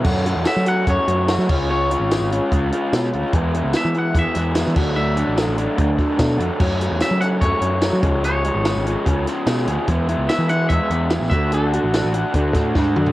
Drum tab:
CC |x-------------x-|----------------|--------------x-|----------------|
HH |--x-x-x-x-x-x---|--x-x-x-x-x-x-x-|x-x-x-x-x-x-x---|--x-x-x-x-x-x-x-|
TB |----x-------x---|----x-------x---|----x-------x---|----x-------x---|
SD |----o-------oo--|----o-------oo--|----o-----o-oo--|----o-----o-o---|
T2 |----------------|----------------|----------------|----------------|
FT |----------------|----------------|----------------|----------------|
BD |o-------o-----o-|--------o-------|o-------o-----o-|--------o-o-o---|

CC |x---------------|----------------|----------------|----------------|
HH |--x-x-x-x-x-x-x-|x-x-x-x-x-x-x-x-|x-x-x-x-x-x-x-x-|x-x-x-x-x-x-----|
TB |----x-------x---|----x-------x---|----x-------x---|----x-----------|
SD |----o-------o---|----o-----o-oo--|----o-------oo--|----o-----o-o---|
T2 |----------------|----------------|----------------|--------------o-|
FT |----------------|----------------|----------------|---------------o|
BD |o-------o-----o-|--------o-------|o-------o-----o-|--------o-o-o---|